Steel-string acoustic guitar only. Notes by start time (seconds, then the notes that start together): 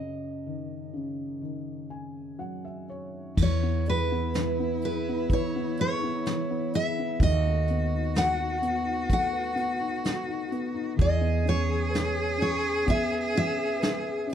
Already playing: D#5
3.42 C#5
3.90 B4
4.85 B4
5.33 C#5
5.81 C#5
6.75 E5
7.23 D#5
8.18 F#5
9.13 F#5
11.01 D#5
11.49 C#5
12.42 C#5
12.90 E5
13.37 E5